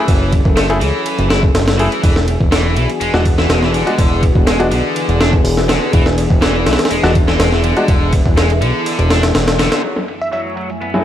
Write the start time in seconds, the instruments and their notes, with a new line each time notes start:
Already playing: distorted electric guitar E3, analog synth pad F#3 C#4 E4 G#4 A4
0.08 analog synth bass F#1, kick, ride
0.32 kick, ride
0.45 analog synth bass F#1, kick
0.56 distorted electric guitar A3, snare, ride
0.70 grand piano A3 E4 G#4, ride
0.81 analog synth bass C#2, distorted electric guitar E3, ride
1.06 ride
1.19 analog synth bass F#1, ride
1.30 distorted electric guitar E4, snare, ride
1.43 kick
1.54 analog synth bass F#1, snare, ride
1.68 snare, ride
1.78 distorted electric guitar E3, grand piano A3 E4 G#4, ride
1.92 ride
2.03 analog synth bass E1, distorted electric guitar E3, analog synth pad E3 B3 D4 F#4 G#4, kick, ride
2.16 snare
2.28 ride
2.40 analog synth bass E1, kick
2.52 distorted electric guitar E3, snare, ride
2.76 analog synth bass B1, distorted electric guitar E3, ride
2.90 ride
3.01 analog synth bass E1, distorted electric guitar G#3, ride
3.13 analog synth bass E1, distorted electric guitar E3, grand piano G#3 D4 F#4, snare
3.25 kick, ride
3.38 distorted electric guitar E3, snare
3.49 analog synth bass E1, distorted electric guitar G#3, snare, ride
3.63 distorted electric guitar E3, snare
3.74 distorted electric guitar D3, ride
3.87 grand piano G#3 D4 F#4, ride
3.98 analog synth bass E1, kick, ride
4.23 kick, ride
4.35 analog synth bass E1, kick
4.47 distorted electric guitar G#3, snare, ride
4.60 grand piano G#3 D4 F#4, ride
4.71 analog synth bass B1, distorted electric guitar D3, ride
4.96 ride
5.08 analog synth bass E1, ride
5.20 distorted electric guitar D4, snare, ride
5.33 kick
5.44 analog synth bass E1, open hi-hat
5.57 snare
5.69 distorted electric guitar D3, snare, ride
5.93 analog synth bass E1, distorted electric guitar E3, analog synth pad E4, kick, ride
6.06 snare
6.18 ride
6.30 analog synth bass E1, kick
6.42 distorted electric guitar E3, snare, ride
6.66 analog synth bass B1, distorted electric guitar E3, snare, ride
6.73 snare, ride
6.79 snare, ride
6.85 snare, ride
6.90 analog synth bass E1, distorted electric guitar G#3, ride
7.03 analog synth bass E1, distorted electric guitar E3, grand piano G#3 D4 F#4, snare
7.15 kick, ride
7.28 distorted electric guitar E3, snare
7.39 analog synth bass E1, distorted electric guitar G#3, snare, ride
7.52 distorted electric guitar E3, snare
7.64 distorted electric guitar D3, ride
7.77 grand piano G#3 D4 F#4, ride
7.88 analog synth bass E1, kick, ride
8.13 kick, ride
8.26 analog synth bass E1, kick
8.37 distorted electric guitar G#3, snare, ride
8.50 ride
8.62 analog synth bass B1, distorted electric guitar D3, ride
8.86 ride
8.99 analog synth bass E1, ride
9.10 distorted electric guitar D4, snare, ride
9.23 snare, ride
9.35 analog synth bass E1, snare, ride
9.48 snare, ride
9.59 distorted electric guitar D3, snare, ride
9.72 snare, ride
9.83 analog synth pad F#2 F#3 A3 E4 G#5, distorted electric guitar F#3, ride
9.96 snare
10.08 ride
10.22 digital synth lead E5
10.32 distorted electric guitar F#3, digital synth lead E5, ride
10.57 distorted electric guitar F#3, ride
10.70 ride
10.82 distorted electric guitar B3, ride
10.94 grand piano F#2 A3 E4 G#4, distorted electric guitar F#3, snare